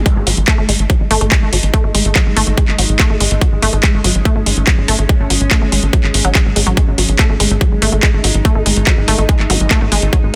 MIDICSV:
0, 0, Header, 1, 6, 480
1, 0, Start_track
1, 0, Tempo, 419580
1, 66, Time_signature, 4, 2, 24, 8
1, 11843, End_track
2, 0, Start_track
2, 0, Title_t, "Ambient pad"
2, 0, Program_c, 0, 92
2, 65, Note_on_c, 0, 56, 74
2, 66, Note_on_c, 0, 63, 74
2, 3906, Note_on_c, 0, 61, 71
2, 3930, Note_off_c, 0, 63, 0
2, 7746, Note_on_c, 0, 63, 71
2, 7770, Note_off_c, 0, 61, 0
2, 11586, Note_on_c, 0, 61, 74
2, 11610, Note_off_c, 0, 63, 0
2, 11843, Note_off_c, 0, 56, 0
2, 11843, Note_off_c, 0, 61, 0
2, 11843, End_track
3, 0, Start_track
3, 0, Title_t, "Synth arpeggio sound"
3, 0, Program_c, 1, 84
3, 66, Note_on_c, 1, 56, 81
3, 137, Note_off_c, 1, 56, 0
3, 306, Note_on_c, 1, 54, 78
3, 353, Note_off_c, 1, 54, 0
3, 546, Note_on_c, 1, 57, 101
3, 593, Note_off_c, 1, 57, 0
3, 666, Note_on_c, 1, 57, 77
3, 713, Note_off_c, 1, 57, 0
3, 786, Note_on_c, 1, 56, 75
3, 857, Note_off_c, 1, 56, 0
3, 1025, Note_on_c, 1, 54, 83
3, 1073, Note_off_c, 1, 54, 0
3, 1266, Note_on_c, 1, 57, 102
3, 1313, Note_off_c, 1, 57, 0
3, 1386, Note_on_c, 1, 57, 76
3, 1434, Note_off_c, 1, 57, 0
3, 1506, Note_on_c, 1, 56, 85
3, 1577, Note_off_c, 1, 56, 0
3, 1746, Note_on_c, 1, 54, 75
3, 1793, Note_off_c, 1, 54, 0
3, 1986, Note_on_c, 1, 57, 99
3, 2033, Note_off_c, 1, 57, 0
3, 2106, Note_on_c, 1, 57, 80
3, 2153, Note_off_c, 1, 57, 0
3, 2226, Note_on_c, 1, 56, 78
3, 2297, Note_off_c, 1, 56, 0
3, 2466, Note_on_c, 1, 54, 86
3, 2513, Note_off_c, 1, 54, 0
3, 2706, Note_on_c, 1, 57, 100
3, 2753, Note_off_c, 1, 57, 0
3, 2826, Note_on_c, 1, 57, 75
3, 2873, Note_off_c, 1, 57, 0
3, 2946, Note_on_c, 1, 56, 84
3, 3017, Note_off_c, 1, 56, 0
3, 3186, Note_on_c, 1, 54, 78
3, 3234, Note_off_c, 1, 54, 0
3, 3426, Note_on_c, 1, 57, 103
3, 3474, Note_off_c, 1, 57, 0
3, 3546, Note_on_c, 1, 57, 74
3, 3594, Note_off_c, 1, 57, 0
3, 3666, Note_on_c, 1, 56, 76
3, 3737, Note_off_c, 1, 56, 0
3, 3906, Note_on_c, 1, 54, 80
3, 3954, Note_off_c, 1, 54, 0
3, 4146, Note_on_c, 1, 57, 105
3, 4194, Note_off_c, 1, 57, 0
3, 4266, Note_on_c, 1, 57, 75
3, 4314, Note_off_c, 1, 57, 0
3, 4386, Note_on_c, 1, 56, 84
3, 4457, Note_off_c, 1, 56, 0
3, 4626, Note_on_c, 1, 54, 78
3, 4673, Note_off_c, 1, 54, 0
3, 4866, Note_on_c, 1, 57, 104
3, 4913, Note_off_c, 1, 57, 0
3, 4986, Note_on_c, 1, 57, 77
3, 5033, Note_off_c, 1, 57, 0
3, 5106, Note_on_c, 1, 56, 77
3, 5177, Note_off_c, 1, 56, 0
3, 5345, Note_on_c, 1, 54, 83
3, 5393, Note_off_c, 1, 54, 0
3, 5586, Note_on_c, 1, 57, 104
3, 5633, Note_off_c, 1, 57, 0
3, 5705, Note_on_c, 1, 57, 78
3, 5753, Note_off_c, 1, 57, 0
3, 5825, Note_on_c, 1, 56, 81
3, 5897, Note_off_c, 1, 56, 0
3, 6065, Note_on_c, 1, 54, 75
3, 6113, Note_off_c, 1, 54, 0
3, 6305, Note_on_c, 1, 57, 102
3, 6353, Note_off_c, 1, 57, 0
3, 6425, Note_on_c, 1, 57, 75
3, 6473, Note_off_c, 1, 57, 0
3, 6545, Note_on_c, 1, 56, 75
3, 6617, Note_off_c, 1, 56, 0
3, 6785, Note_on_c, 1, 54, 85
3, 6833, Note_off_c, 1, 54, 0
3, 7145, Note_on_c, 1, 54, 102
3, 7193, Note_off_c, 1, 54, 0
3, 7265, Note_on_c, 1, 56, 85
3, 7313, Note_off_c, 1, 56, 0
3, 7506, Note_on_c, 1, 56, 77
3, 7577, Note_off_c, 1, 56, 0
3, 7625, Note_on_c, 1, 54, 103
3, 7654, Note_off_c, 1, 54, 0
3, 7746, Note_on_c, 1, 56, 80
3, 7817, Note_off_c, 1, 56, 0
3, 7986, Note_on_c, 1, 54, 77
3, 8033, Note_off_c, 1, 54, 0
3, 8226, Note_on_c, 1, 57, 101
3, 8274, Note_off_c, 1, 57, 0
3, 8346, Note_on_c, 1, 57, 77
3, 8394, Note_off_c, 1, 57, 0
3, 8466, Note_on_c, 1, 56, 75
3, 8537, Note_off_c, 1, 56, 0
3, 8706, Note_on_c, 1, 54, 84
3, 8753, Note_off_c, 1, 54, 0
3, 8946, Note_on_c, 1, 57, 102
3, 8993, Note_off_c, 1, 57, 0
3, 9066, Note_on_c, 1, 57, 76
3, 9113, Note_off_c, 1, 57, 0
3, 9186, Note_on_c, 1, 56, 83
3, 9257, Note_off_c, 1, 56, 0
3, 9426, Note_on_c, 1, 54, 76
3, 9473, Note_off_c, 1, 54, 0
3, 9666, Note_on_c, 1, 57, 97
3, 9714, Note_off_c, 1, 57, 0
3, 9786, Note_on_c, 1, 57, 76
3, 9834, Note_off_c, 1, 57, 0
3, 9906, Note_on_c, 1, 56, 79
3, 9977, Note_off_c, 1, 56, 0
3, 10146, Note_on_c, 1, 54, 81
3, 10193, Note_off_c, 1, 54, 0
3, 10386, Note_on_c, 1, 57, 101
3, 10434, Note_off_c, 1, 57, 0
3, 10506, Note_on_c, 1, 57, 77
3, 10554, Note_off_c, 1, 57, 0
3, 10626, Note_on_c, 1, 56, 83
3, 10697, Note_off_c, 1, 56, 0
3, 10866, Note_on_c, 1, 54, 77
3, 10913, Note_off_c, 1, 54, 0
3, 11105, Note_on_c, 1, 57, 104
3, 11153, Note_off_c, 1, 57, 0
3, 11226, Note_on_c, 1, 57, 78
3, 11273, Note_off_c, 1, 57, 0
3, 11346, Note_on_c, 1, 56, 78
3, 11417, Note_off_c, 1, 56, 0
3, 11586, Note_on_c, 1, 54, 84
3, 11633, Note_off_c, 1, 54, 0
3, 11843, End_track
4, 0, Start_track
4, 0, Title_t, "Analog synth bass"
4, 0, Program_c, 2, 38
4, 186, Note_on_c, 2, 32, 88
4, 269, Note_off_c, 2, 32, 0
4, 305, Note_on_c, 2, 32, 99
4, 389, Note_off_c, 2, 32, 0
4, 426, Note_on_c, 2, 32, 96
4, 509, Note_off_c, 2, 32, 0
4, 666, Note_on_c, 2, 32, 92
4, 749, Note_off_c, 2, 32, 0
4, 786, Note_on_c, 2, 32, 99
4, 869, Note_off_c, 2, 32, 0
4, 906, Note_on_c, 2, 32, 90
4, 990, Note_off_c, 2, 32, 0
4, 1146, Note_on_c, 2, 32, 93
4, 1230, Note_off_c, 2, 32, 0
4, 1266, Note_on_c, 2, 32, 101
4, 1349, Note_off_c, 2, 32, 0
4, 1386, Note_on_c, 2, 32, 91
4, 1470, Note_off_c, 2, 32, 0
4, 1626, Note_on_c, 2, 32, 86
4, 1710, Note_off_c, 2, 32, 0
4, 1746, Note_on_c, 2, 32, 99
4, 1830, Note_off_c, 2, 32, 0
4, 1866, Note_on_c, 2, 32, 91
4, 1950, Note_off_c, 2, 32, 0
4, 2106, Note_on_c, 2, 32, 87
4, 2190, Note_off_c, 2, 32, 0
4, 2226, Note_on_c, 2, 32, 100
4, 2310, Note_off_c, 2, 32, 0
4, 2346, Note_on_c, 2, 32, 92
4, 2430, Note_off_c, 2, 32, 0
4, 2586, Note_on_c, 2, 32, 87
4, 2670, Note_off_c, 2, 32, 0
4, 2706, Note_on_c, 2, 32, 103
4, 2790, Note_off_c, 2, 32, 0
4, 2826, Note_on_c, 2, 32, 93
4, 2909, Note_off_c, 2, 32, 0
4, 3066, Note_on_c, 2, 32, 88
4, 3149, Note_off_c, 2, 32, 0
4, 3186, Note_on_c, 2, 32, 100
4, 3269, Note_off_c, 2, 32, 0
4, 3306, Note_on_c, 2, 32, 92
4, 3389, Note_off_c, 2, 32, 0
4, 3546, Note_on_c, 2, 32, 87
4, 3629, Note_off_c, 2, 32, 0
4, 3666, Note_on_c, 2, 32, 96
4, 3749, Note_off_c, 2, 32, 0
4, 3786, Note_on_c, 2, 32, 94
4, 3869, Note_off_c, 2, 32, 0
4, 4026, Note_on_c, 2, 32, 88
4, 4110, Note_off_c, 2, 32, 0
4, 4146, Note_on_c, 2, 32, 100
4, 4230, Note_off_c, 2, 32, 0
4, 4266, Note_on_c, 2, 32, 94
4, 4350, Note_off_c, 2, 32, 0
4, 4506, Note_on_c, 2, 32, 88
4, 4590, Note_off_c, 2, 32, 0
4, 4626, Note_on_c, 2, 32, 103
4, 4710, Note_off_c, 2, 32, 0
4, 4746, Note_on_c, 2, 32, 89
4, 4830, Note_off_c, 2, 32, 0
4, 4986, Note_on_c, 2, 32, 89
4, 5070, Note_off_c, 2, 32, 0
4, 5106, Note_on_c, 2, 32, 97
4, 5189, Note_off_c, 2, 32, 0
4, 5226, Note_on_c, 2, 32, 91
4, 5309, Note_off_c, 2, 32, 0
4, 5466, Note_on_c, 2, 32, 90
4, 5549, Note_off_c, 2, 32, 0
4, 5586, Note_on_c, 2, 32, 99
4, 5670, Note_off_c, 2, 32, 0
4, 5706, Note_on_c, 2, 32, 90
4, 5790, Note_off_c, 2, 32, 0
4, 5946, Note_on_c, 2, 32, 89
4, 6029, Note_off_c, 2, 32, 0
4, 6066, Note_on_c, 2, 32, 103
4, 6149, Note_off_c, 2, 32, 0
4, 6186, Note_on_c, 2, 32, 92
4, 6269, Note_off_c, 2, 32, 0
4, 6426, Note_on_c, 2, 32, 86
4, 6509, Note_off_c, 2, 32, 0
4, 6546, Note_on_c, 2, 32, 102
4, 6629, Note_off_c, 2, 32, 0
4, 6666, Note_on_c, 2, 32, 92
4, 6749, Note_off_c, 2, 32, 0
4, 6906, Note_on_c, 2, 32, 92
4, 6990, Note_off_c, 2, 32, 0
4, 7026, Note_on_c, 2, 32, 100
4, 7110, Note_off_c, 2, 32, 0
4, 7146, Note_on_c, 2, 32, 94
4, 7230, Note_off_c, 2, 32, 0
4, 7386, Note_on_c, 2, 32, 87
4, 7469, Note_off_c, 2, 32, 0
4, 7506, Note_on_c, 2, 32, 103
4, 7590, Note_off_c, 2, 32, 0
4, 7626, Note_on_c, 2, 33, 90
4, 7710, Note_off_c, 2, 33, 0
4, 7866, Note_on_c, 2, 32, 89
4, 7950, Note_off_c, 2, 32, 0
4, 7986, Note_on_c, 2, 32, 98
4, 8070, Note_off_c, 2, 32, 0
4, 8106, Note_on_c, 2, 32, 93
4, 8190, Note_off_c, 2, 32, 0
4, 8346, Note_on_c, 2, 32, 90
4, 8430, Note_off_c, 2, 32, 0
4, 8466, Note_on_c, 2, 32, 100
4, 8550, Note_off_c, 2, 32, 0
4, 8586, Note_on_c, 2, 32, 94
4, 8670, Note_off_c, 2, 32, 0
4, 8826, Note_on_c, 2, 32, 89
4, 8910, Note_off_c, 2, 32, 0
4, 8946, Note_on_c, 2, 32, 101
4, 9029, Note_off_c, 2, 32, 0
4, 9066, Note_on_c, 2, 32, 91
4, 9150, Note_off_c, 2, 32, 0
4, 9306, Note_on_c, 2, 32, 90
4, 9390, Note_off_c, 2, 32, 0
4, 9426, Note_on_c, 2, 32, 98
4, 9510, Note_off_c, 2, 32, 0
4, 9546, Note_on_c, 2, 32, 92
4, 9630, Note_off_c, 2, 32, 0
4, 9786, Note_on_c, 2, 32, 90
4, 9870, Note_off_c, 2, 32, 0
4, 9906, Note_on_c, 2, 32, 99
4, 9990, Note_off_c, 2, 32, 0
4, 10027, Note_on_c, 2, 32, 90
4, 10110, Note_off_c, 2, 32, 0
4, 10266, Note_on_c, 2, 32, 90
4, 10350, Note_off_c, 2, 32, 0
4, 10386, Note_on_c, 2, 32, 101
4, 10470, Note_off_c, 2, 32, 0
4, 10506, Note_on_c, 2, 32, 92
4, 10590, Note_off_c, 2, 32, 0
4, 10746, Note_on_c, 2, 32, 91
4, 10830, Note_off_c, 2, 32, 0
4, 10866, Note_on_c, 2, 32, 98
4, 10950, Note_off_c, 2, 32, 0
4, 10986, Note_on_c, 2, 32, 92
4, 11070, Note_off_c, 2, 32, 0
4, 11226, Note_on_c, 2, 32, 89
4, 11309, Note_off_c, 2, 32, 0
4, 11346, Note_on_c, 2, 32, 98
4, 11429, Note_off_c, 2, 32, 0
4, 11466, Note_on_c, 2, 32, 94
4, 11549, Note_off_c, 2, 32, 0
4, 11705, Note_on_c, 2, 32, 89
4, 11789, Note_off_c, 2, 32, 0
4, 11843, End_track
5, 0, Start_track
5, 0, Title_t, "Zap"
5, 0, Program_c, 3, 103
5, 10866, Note_on_c, 3, 60, 59
5, 10986, Note_off_c, 3, 60, 0
5, 11843, End_track
6, 0, Start_track
6, 0, Title_t, "Drums"
6, 66, Note_on_c, 9, 36, 122
6, 66, Note_on_c, 9, 42, 84
6, 180, Note_off_c, 9, 36, 0
6, 181, Note_off_c, 9, 42, 0
6, 306, Note_on_c, 9, 46, 106
6, 421, Note_off_c, 9, 46, 0
6, 426, Note_on_c, 9, 42, 55
6, 541, Note_off_c, 9, 42, 0
6, 546, Note_on_c, 9, 36, 121
6, 546, Note_on_c, 9, 39, 126
6, 546, Note_on_c, 9, 42, 80
6, 660, Note_off_c, 9, 36, 0
6, 660, Note_off_c, 9, 39, 0
6, 660, Note_off_c, 9, 42, 0
6, 786, Note_on_c, 9, 46, 105
6, 901, Note_off_c, 9, 46, 0
6, 906, Note_on_c, 9, 42, 56
6, 1021, Note_off_c, 9, 42, 0
6, 1026, Note_on_c, 9, 36, 115
6, 1026, Note_on_c, 9, 42, 81
6, 1140, Note_off_c, 9, 36, 0
6, 1141, Note_off_c, 9, 42, 0
6, 1266, Note_on_c, 9, 46, 104
6, 1380, Note_off_c, 9, 46, 0
6, 1386, Note_on_c, 9, 42, 55
6, 1501, Note_off_c, 9, 42, 0
6, 1506, Note_on_c, 9, 36, 116
6, 1506, Note_on_c, 9, 39, 127
6, 1506, Note_on_c, 9, 42, 84
6, 1620, Note_off_c, 9, 36, 0
6, 1620, Note_off_c, 9, 39, 0
6, 1620, Note_off_c, 9, 42, 0
6, 1746, Note_on_c, 9, 46, 110
6, 1860, Note_off_c, 9, 46, 0
6, 1866, Note_on_c, 9, 42, 57
6, 1980, Note_off_c, 9, 42, 0
6, 1986, Note_on_c, 9, 36, 127
6, 1986, Note_on_c, 9, 42, 81
6, 2100, Note_off_c, 9, 36, 0
6, 2100, Note_off_c, 9, 42, 0
6, 2226, Note_on_c, 9, 46, 109
6, 2340, Note_off_c, 9, 46, 0
6, 2346, Note_on_c, 9, 42, 52
6, 2461, Note_off_c, 9, 42, 0
6, 2466, Note_on_c, 9, 36, 126
6, 2466, Note_on_c, 9, 39, 127
6, 2466, Note_on_c, 9, 42, 82
6, 2580, Note_off_c, 9, 36, 0
6, 2581, Note_off_c, 9, 39, 0
6, 2581, Note_off_c, 9, 42, 0
6, 2706, Note_on_c, 9, 46, 112
6, 2821, Note_off_c, 9, 46, 0
6, 2826, Note_on_c, 9, 42, 56
6, 2940, Note_off_c, 9, 42, 0
6, 2946, Note_on_c, 9, 36, 124
6, 2946, Note_on_c, 9, 42, 81
6, 3060, Note_off_c, 9, 36, 0
6, 3061, Note_off_c, 9, 42, 0
6, 3066, Note_on_c, 9, 39, 39
6, 3181, Note_off_c, 9, 39, 0
6, 3186, Note_on_c, 9, 46, 109
6, 3300, Note_off_c, 9, 46, 0
6, 3306, Note_on_c, 9, 42, 56
6, 3420, Note_off_c, 9, 42, 0
6, 3426, Note_on_c, 9, 36, 123
6, 3426, Note_on_c, 9, 39, 127
6, 3426, Note_on_c, 9, 42, 80
6, 3540, Note_off_c, 9, 39, 0
6, 3540, Note_off_c, 9, 42, 0
6, 3541, Note_off_c, 9, 36, 0
6, 3666, Note_on_c, 9, 46, 112
6, 3781, Note_off_c, 9, 46, 0
6, 3786, Note_on_c, 9, 42, 55
6, 3901, Note_off_c, 9, 42, 0
6, 3906, Note_on_c, 9, 36, 123
6, 3907, Note_on_c, 9, 42, 79
6, 4020, Note_off_c, 9, 36, 0
6, 4021, Note_off_c, 9, 42, 0
6, 4146, Note_on_c, 9, 46, 109
6, 4261, Note_off_c, 9, 46, 0
6, 4266, Note_on_c, 9, 42, 51
6, 4381, Note_off_c, 9, 42, 0
6, 4386, Note_on_c, 9, 36, 127
6, 4386, Note_on_c, 9, 39, 126
6, 4386, Note_on_c, 9, 42, 74
6, 4501, Note_off_c, 9, 36, 0
6, 4501, Note_off_c, 9, 39, 0
6, 4501, Note_off_c, 9, 42, 0
6, 4626, Note_on_c, 9, 46, 112
6, 4741, Note_off_c, 9, 46, 0
6, 4747, Note_on_c, 9, 42, 52
6, 4861, Note_off_c, 9, 42, 0
6, 4866, Note_on_c, 9, 36, 127
6, 4866, Note_on_c, 9, 42, 77
6, 4981, Note_off_c, 9, 36, 0
6, 4981, Note_off_c, 9, 42, 0
6, 5106, Note_on_c, 9, 46, 113
6, 5221, Note_off_c, 9, 46, 0
6, 5226, Note_on_c, 9, 42, 52
6, 5341, Note_off_c, 9, 42, 0
6, 5346, Note_on_c, 9, 36, 124
6, 5346, Note_on_c, 9, 39, 121
6, 5346, Note_on_c, 9, 42, 77
6, 5461, Note_off_c, 9, 36, 0
6, 5461, Note_off_c, 9, 39, 0
6, 5461, Note_off_c, 9, 42, 0
6, 5586, Note_on_c, 9, 46, 116
6, 5700, Note_off_c, 9, 46, 0
6, 5706, Note_on_c, 9, 42, 52
6, 5820, Note_off_c, 9, 42, 0
6, 5826, Note_on_c, 9, 36, 125
6, 5826, Note_on_c, 9, 42, 74
6, 5940, Note_off_c, 9, 36, 0
6, 5940, Note_off_c, 9, 42, 0
6, 6066, Note_on_c, 9, 46, 109
6, 6180, Note_off_c, 9, 46, 0
6, 6186, Note_on_c, 9, 42, 51
6, 6301, Note_off_c, 9, 42, 0
6, 6306, Note_on_c, 9, 36, 122
6, 6306, Note_on_c, 9, 39, 123
6, 6306, Note_on_c, 9, 42, 73
6, 6420, Note_off_c, 9, 36, 0
6, 6421, Note_off_c, 9, 39, 0
6, 6421, Note_off_c, 9, 42, 0
6, 6546, Note_on_c, 9, 46, 106
6, 6660, Note_off_c, 9, 46, 0
6, 6666, Note_on_c, 9, 42, 51
6, 6780, Note_off_c, 9, 42, 0
6, 6786, Note_on_c, 9, 36, 118
6, 6786, Note_on_c, 9, 42, 78
6, 6901, Note_off_c, 9, 36, 0
6, 6901, Note_off_c, 9, 42, 0
6, 6906, Note_on_c, 9, 39, 36
6, 7021, Note_off_c, 9, 39, 0
6, 7026, Note_on_c, 9, 46, 110
6, 7141, Note_off_c, 9, 46, 0
6, 7146, Note_on_c, 9, 42, 51
6, 7261, Note_off_c, 9, 42, 0
6, 7266, Note_on_c, 9, 36, 125
6, 7266, Note_on_c, 9, 39, 116
6, 7266, Note_on_c, 9, 42, 78
6, 7380, Note_off_c, 9, 39, 0
6, 7380, Note_off_c, 9, 42, 0
6, 7381, Note_off_c, 9, 36, 0
6, 7506, Note_on_c, 9, 46, 112
6, 7621, Note_off_c, 9, 46, 0
6, 7626, Note_on_c, 9, 42, 52
6, 7741, Note_off_c, 9, 42, 0
6, 7746, Note_on_c, 9, 36, 125
6, 7746, Note_on_c, 9, 42, 79
6, 7861, Note_off_c, 9, 36, 0
6, 7861, Note_off_c, 9, 42, 0
6, 7986, Note_on_c, 9, 46, 104
6, 8100, Note_off_c, 9, 46, 0
6, 8106, Note_on_c, 9, 42, 52
6, 8220, Note_off_c, 9, 42, 0
6, 8226, Note_on_c, 9, 36, 121
6, 8226, Note_on_c, 9, 39, 113
6, 8226, Note_on_c, 9, 42, 77
6, 8340, Note_off_c, 9, 39, 0
6, 8340, Note_off_c, 9, 42, 0
6, 8341, Note_off_c, 9, 36, 0
6, 8466, Note_on_c, 9, 46, 106
6, 8580, Note_off_c, 9, 46, 0
6, 8586, Note_on_c, 9, 42, 52
6, 8700, Note_off_c, 9, 42, 0
6, 8706, Note_on_c, 9, 36, 120
6, 8706, Note_on_c, 9, 42, 73
6, 8820, Note_off_c, 9, 42, 0
6, 8821, Note_off_c, 9, 36, 0
6, 8946, Note_on_c, 9, 46, 111
6, 9060, Note_off_c, 9, 46, 0
6, 9066, Note_on_c, 9, 42, 52
6, 9180, Note_off_c, 9, 42, 0
6, 9186, Note_on_c, 9, 36, 121
6, 9186, Note_on_c, 9, 39, 116
6, 9186, Note_on_c, 9, 42, 75
6, 9300, Note_off_c, 9, 39, 0
6, 9300, Note_off_c, 9, 42, 0
6, 9301, Note_off_c, 9, 36, 0
6, 9426, Note_on_c, 9, 46, 107
6, 9540, Note_off_c, 9, 46, 0
6, 9546, Note_on_c, 9, 42, 53
6, 9660, Note_off_c, 9, 42, 0
6, 9666, Note_on_c, 9, 36, 115
6, 9666, Note_on_c, 9, 42, 82
6, 9780, Note_off_c, 9, 42, 0
6, 9781, Note_off_c, 9, 36, 0
6, 9906, Note_on_c, 9, 46, 105
6, 10021, Note_off_c, 9, 46, 0
6, 10026, Note_on_c, 9, 42, 52
6, 10141, Note_off_c, 9, 42, 0
6, 10146, Note_on_c, 9, 36, 111
6, 10146, Note_on_c, 9, 39, 114
6, 10146, Note_on_c, 9, 42, 79
6, 10261, Note_off_c, 9, 36, 0
6, 10261, Note_off_c, 9, 39, 0
6, 10261, Note_off_c, 9, 42, 0
6, 10386, Note_on_c, 9, 46, 107
6, 10501, Note_off_c, 9, 46, 0
6, 10506, Note_on_c, 9, 42, 54
6, 10621, Note_off_c, 9, 42, 0
6, 10626, Note_on_c, 9, 36, 116
6, 10626, Note_on_c, 9, 42, 76
6, 10741, Note_off_c, 9, 36, 0
6, 10741, Note_off_c, 9, 42, 0
6, 10746, Note_on_c, 9, 39, 36
6, 10861, Note_off_c, 9, 39, 0
6, 10866, Note_on_c, 9, 46, 107
6, 10981, Note_off_c, 9, 46, 0
6, 10986, Note_on_c, 9, 42, 53
6, 11101, Note_off_c, 9, 42, 0
6, 11106, Note_on_c, 9, 36, 122
6, 11106, Note_on_c, 9, 39, 113
6, 11106, Note_on_c, 9, 42, 80
6, 11220, Note_off_c, 9, 36, 0
6, 11221, Note_off_c, 9, 39, 0
6, 11221, Note_off_c, 9, 42, 0
6, 11346, Note_on_c, 9, 46, 106
6, 11460, Note_off_c, 9, 46, 0
6, 11466, Note_on_c, 9, 42, 54
6, 11581, Note_off_c, 9, 42, 0
6, 11586, Note_on_c, 9, 36, 116
6, 11586, Note_on_c, 9, 42, 80
6, 11701, Note_off_c, 9, 36, 0
6, 11701, Note_off_c, 9, 42, 0
6, 11843, End_track
0, 0, End_of_file